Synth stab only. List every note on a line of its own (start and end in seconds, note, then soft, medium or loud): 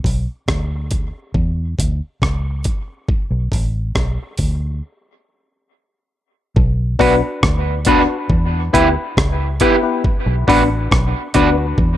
6.99 7.21 B3 loud
6.99 7.21 D4 medium
6.99 7.21 F#4 medium
6.99 7.21 B4 loud
7.87 8.08 B3 medium
7.87 8.08 D4 medium
7.87 8.08 F#4 medium
7.87 8.08 B4 loud
8.09 8.18 F#4 soft
8.09 8.18 B4 soft
8.73 8.95 B3 medium
8.73 8.95 E4 medium
8.73 8.95 G4 medium
8.73 8.95 B4 loud
9.61 9.81 B3 medium
9.61 9.82 E4 medium
9.61 9.82 G4 medium
9.61 9.82 B4 loud
9.83 10.03 B3 medium
9.83 10.03 E4 medium
9.83 10.04 G4 medium
9.83 10.04 B4 medium
10.48 10.69 B3 loud
10.48 10.69 D4 medium
10.48 10.69 F#4 medium
10.48 10.69 B4 loud
11.35 11.56 B3 medium
11.35 11.56 D4 medium
11.35 11.56 F#4 medium
11.35 11.57 B4 loud
11.57 11.66 F#4 soft
11.57 11.66 B4 soft